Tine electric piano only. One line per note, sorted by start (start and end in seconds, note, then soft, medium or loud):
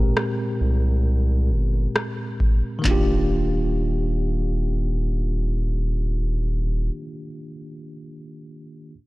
0.00 2.79 A#2 medium
0.00 2.80 G#3 medium
0.00 2.84 C4 medium
0.00 2.81 G4 medium
0.00 2.82 A#4 medium
2.79 6.84 D#3 medium
2.79 6.87 A#3 medium
2.85 6.90 D4 medium
2.85 6.93 F4 medium
2.91 6.96 G4 medium